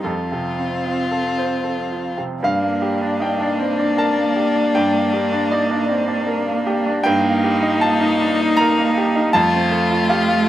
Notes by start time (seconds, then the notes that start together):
0.04 F2 C4 F4 A4
0.32 C3
0.59 C4
0.85 F4
1.11 A4
1.38 C5
1.64 A4
1.90 F4
2.17 C3
2.43 G2 A#3 D4 F5
2.63 A#3
2.82 G4
3.01 D4
3.20 D#4 G5
3.40 D4
3.59 C4
3.79 D4
3.97 A#4 A5
4.18 A#3
4.36 G4
4.55 D4
4.75 G2 G5
4.94 A#3
5.13 G4
5.32 D4
5.51 D#4 D5
5.71 D4
5.89 C4
6.08 D4
6.27 A#4
6.47 A#3
6.67 G4
6.86 D4
7.03 G2 A#3 D#4 G5
7.25 A#3
7.44 G4
7.63 D#4
7.81 F4 A5
8.01 D#4
8.21 D4
8.41 D#4
8.57 A#4 A#5
8.79 A#3
8.97 G4
9.15 D#4
9.33 F2 A3 F4 A5
9.53 C4
9.71 A4
9.91 F4
10.09 G4 F5
10.29 F4